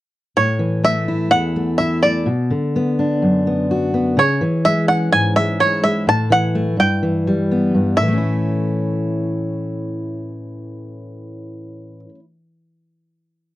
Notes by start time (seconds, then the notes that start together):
0.37 A2 C#5
0.59 E3
0.84 A3 E5
1.08 E4
1.31 E2 F#5
1.56 A3
1.78 E4 E5
2.03 A3 D5
2.26 B2
2.50 D3
2.76 B3
2.99 D4
3.22 F#2
3.47 B3
3.71 F#4
3.94 B3
4.17 C#3 C#5
4.41 E3
4.65 G#3 E5
4.88 C#4 F#5
5.12 G#2 G#5
5.36 G#3 E5
5.60 E4 C#5
5.84 G#3 E5
6.07 A2 A5
6.30 E3 F#5
6.55 A3
6.77 G2 G5
7.03 E3
7.27 G3
7.51 B3
7.74 G2
7.97 A2 E5
8.02 E3
8.08 A3
8.13 C#4
8.18 E4